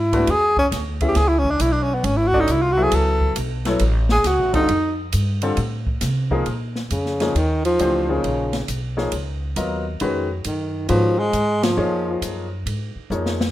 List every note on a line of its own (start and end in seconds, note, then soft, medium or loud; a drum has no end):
0.00 0.26 G#2 medium
0.00 0.32 E4 medium
0.13 0.26 A3 medium
0.13 0.26 B3 medium
0.13 0.27 D4 medium
0.13 0.27 F#4 medium
0.13 0.26 B4 medium
0.13 kick soft
0.13 ride medium
0.27 0.71 E2 medium
0.27 0.58 G#4 loud
0.27 ride medium
0.57 0.67 C#4 medium
0.57 kick medium
0.72 1.15 D2 medium
0.72 snare soft
0.72 hi-hat pedal soft
0.72 ride medium
1.01 1.14 B3 medium
1.01 1.15 C#4 medium
1.01 1.15 E4 medium
1.01 1.15 G#4 medium
1.01 1.15 E5 medium
1.01 kick medium
1.01 ride soft
1.08 1.18 G4 medium
1.15 1.59 C#2 medium
1.15 1.30 G#4 loud
1.15 snare soft
1.15 ride medium
1.28 1.40 E4 medium
1.39 1.52 C#4 loud
1.45 kick medium
1.50 1.62 D4 medium
1.60 2.03 B1 medium
1.60 1.73 E4 medium
1.60 hi-hat pedal medium
1.60 ride medium
1.72 1.85 D4 medium
1.83 1.96 C#4 medium
1.94 2.07 B3 medium
2.04 2.47 G#1 loud
2.04 2.18 C#4 medium
2.04 ride medium
2.17 2.29 E4 medium
2.27 2.42 F#4 loud
2.33 2.47 C#4 medium
2.33 2.47 D4 medium
2.33 2.47 F#4 medium
2.33 2.47 A4 medium
2.33 2.47 D5 medium
2.33 kick medium
2.40 2.52 D#4 medium
2.48 2.91 C2 medium
2.48 2.64 E4 medium
2.48 hi-hat pedal medium
2.48 ride medium
2.62 2.74 F4 medium
2.72 2.85 F#4 loud
2.77 3.33 F#3 medium
2.77 3.34 B3 medium
2.77 3.34 E4 medium
2.77 3.34 A4 medium
2.77 3.34 E5 medium
2.83 2.96 G#4 medium
2.92 3.35 C#2 medium
2.92 3.38 A4 medium
2.92 ride medium
3.21 kick soft
3.36 3.80 B1 medium
3.36 hi-hat pedal soft
3.36 ride medium
3.65 3.79 F#3 medium
3.65 3.79 B3 medium
3.65 3.80 E4 medium
3.65 3.80 A4 medium
3.65 3.80 C#5 medium
3.65 snare soft
3.65 ride medium
3.79 4.24 A1 medium
3.79 ride medium
4.09 4.29 G#4 loud
4.09 snare medium
4.24 4.39 C#2 medium
4.24 4.54 F#4 medium
4.24 snare soft
4.24 hi-hat pedal soft
4.24 ride medium
4.39 4.53 A1 medium
4.53 4.68 F#1 medium
4.53 4.67 D3 medium
4.53 4.67 G3 medium
4.53 4.67 C4 medium
4.53 4.96 D#4 medium
4.53 4.68 F4 medium
4.53 4.67 A4 medium
4.53 kick medium
4.53 ride medium
4.69 5.12 F2 medium
4.69 ride medium
5.12 5.57 G2 medium
5.12 hi-hat pedal medium
5.12 ride medium
5.42 5.56 D3 medium
5.42 5.56 G3 medium
5.42 5.56 C4 medium
5.42 5.56 F4 medium
5.42 5.57 A4 medium
5.42 ride medium
5.57 6.01 A2 medium
5.57 ride medium
5.87 kick medium
6.01 6.45 C3 medium
6.01 snare soft
6.01 hi-hat pedal soft
6.01 ride medium
6.31 6.45 F3 medium
6.31 6.45 A#3 medium
6.31 6.45 D#4 medium
6.31 6.45 G#4 medium
6.31 6.45 A#4 medium
6.31 kick medium
6.46 6.90 A#2 medium
6.46 ride medium
6.76 snare soft
6.91 7.34 F2 medium
6.91 7.37 C#3 medium
6.91 hi-hat pedal medium
6.91 ride medium
7.06 snare soft
7.20 7.34 F3 medium
7.20 7.34 A#3 medium
7.20 7.34 D#4 medium
7.20 7.34 G#4 medium
7.20 7.34 C#5 medium
7.20 snare soft
7.20 ride soft
7.35 7.78 D#2 medium
7.35 7.65 D#3 medium
7.35 ride medium
7.65 8.12 F3 loud
7.65 ride soft
7.79 8.22 C#2 medium
7.79 8.06 E3 medium
7.79 8.06 A3 medium
7.79 8.06 D4 medium
7.79 8.06 G4 medium
7.79 8.07 C5 medium
7.79 hi-hat pedal soft
7.79 ride medium
8.09 8.69 C#3 medium
8.09 8.47 F3 medium
8.09 8.48 A#3 soft
8.09 8.48 D#4 medium
8.09 8.48 G#4 medium
8.09 8.48 C#5 medium
8.24 8.67 A#1 medium
8.24 ride medium
8.53 snare medium
8.53 ride soft
8.68 9.11 B1 medium
8.68 hi-hat pedal medium
8.68 ride medium
8.97 9.11 F3 medium
8.97 9.11 A#3 medium
8.97 9.11 D#4 medium
8.97 9.11 G#4 medium
8.97 9.11 C#5 medium
8.97 snare soft
9.12 9.55 C#2 medium
9.12 ride medium
9.56 9.99 D#2 medium
9.56 9.83 F#3 medium
9.56 9.83 B3 medium
9.56 9.83 F4 medium
9.56 9.83 A#4 medium
9.56 9.83 D#5 medium
9.56 hi-hat pedal soft
9.56 ride medium
10.00 10.44 F2 medium
10.00 10.27 D#3 medium
10.00 10.27 G#3 medium
10.00 10.27 C#4 medium
10.00 10.28 F#4 medium
10.00 10.28 B4 medium
10.00 ride medium
10.44 10.88 F#2 medium
10.44 10.87 D#3 medium
10.44 hi-hat pedal soft
10.44 ride medium
10.89 11.33 G#2 medium
10.89 11.16 D#3 medium
10.89 11.21 F3 medium
10.89 11.16 G#3 soft
10.89 11.16 C#4 soft
10.89 11.16 F#4 soft
10.89 11.16 B4 medium
10.89 ride medium
11.19 11.65 G#3 loud
11.33 11.76 G#2 medium
11.33 hi-hat pedal soft
11.33 ride medium
11.63 12.23 F3 medium
11.63 snare medium
11.63 ride medium
11.77 12.21 F2 medium
11.77 12.45 F3 medium
11.77 12.45 A#3 medium
11.77 12.45 D#4 medium
11.77 12.46 G#4 medium
11.77 12.46 C#5 medium
12.22 12.65 F#2 medium
12.22 hi-hat pedal medium
12.22 ride medium
12.66 12.94 G#2 medium
12.66 ride medium
12.96 muted upright bass stroke soft
13.10 13.52 F2 medium
13.10 13.37 F3 medium
13.10 13.37 A#3 medium
13.10 13.38 D#4 medium
13.10 13.38 G#4 soft
13.10 13.38 C#5 medium
13.10 hi-hat pedal soft
13.26 snare medium
13.41 snare medium